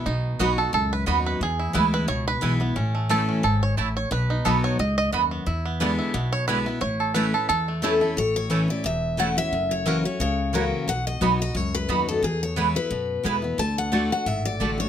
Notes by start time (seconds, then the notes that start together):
Already playing: B3
0.06 B1 B2 D#4
0.39 B1 F#3 B3 D#4 F#4 D#5 B5
0.58 D#4 F#4 A4
0.73 C#2 F#2 A4
0.93 B4
1.06 D#2 F#3 B3 D#4 F#4 D#5 B5
1.26 B4
1.41 E2 G#4
1.59 E4
1.73 D2 E3 G#3 B3 E4 B4 G#5
1.94 B4
2.08 C#2 B2 C#5
2.28 B4
2.41 B1 E3 G#3 B3 E4 B4 G#5
2.60 B3 E4
2.76 A1 A2 C#4
2.95 A3
3.09 E3 A3 C#4 E4 A4 C#5 A5
3.29 C#4
3.43 G#1 G#2 A4
3.63 C#5
3.77 A1 A2 A3 E4 C#5 A5
3.97 C#5
4.11 B1 B2 B4
4.30 D#4
4.45 B1 F#3 B3 D#4 F#4 A4 D#5 B5
4.64 C#5
4.79 C#2 G#2 D#5
4.98 D#5
5.12 D#2 F#2 B3 F#4 D#5 B5
5.31 B3
5.46 E2 E4
5.65 B3
5.80 D3 G#3 B3 D4 E4 D5 G#5
5.99 E4
6.14 B1 B2 B3
6.33 C#5
6.48 D3 G#3 B3 E4 B4 D5 G#5
6.66 B3 E4
6.81 A1 A2 C#5
7.00 A4
7.14 E3 A3 C#4 E4 B4 C#5 A5
7.34 C#4 E4 A4
7.49 E2 A4
7.68 A3
7.82 E3 A3 C#4 E4 A4 C#5 A5
8.01 A3 C#4 E4
8.17 A1 A2 C#5
8.36 C#5
8.50 E3 A3 C#4 E4 C#5 A5
8.68 C#4 E4 D5
8.84 E1 E2 E5
9.17 E3 A3 C#4 E4 C#5 F#5 A5
9.37 C#4 E4 E5
9.52 F#1 F#2
9.71 C#5
9.86 E3 A#3 C#4 E4 F#4 A#4 C#5 F#5
10.04 C#4 F#4 C#5
10.20 C#2 C#3 C#5
10.53 E3 A#3 C#4 E4 F#4 A#4 C#5 F#5
10.87 B1 B2 F#5
11.07 D#5
11.21 B1 F#3 B3 D#4 F#4 D#5 B5
11.39 D#4 F#4 D#5
11.55 C#2 F#2 C#5
11.75 B4
11.89 D#2 F#3 B3 D#4 F#4 D#5 B5
12.09 A4
12.22 E2 G#4
12.43 C#5
12.56 E3 G#3 B3 E4 B4 G#5
12.75 B3 E4 B4
12.91 F#2 B2
13.23 E2 E3 G#3 B3 E4 B4 G#5
13.42 B3 E4
13.58 D2 D3 A5
13.78 F#5
13.92 D3 A3 D4 F#4 D5 A5
14.10 D4 F#4 F#5
14.26 G#1 A2 E5
14.45 D5
14.60 A1 D3 A3 D4 F#4 D5 A5
14.78 D4 F#4 C#5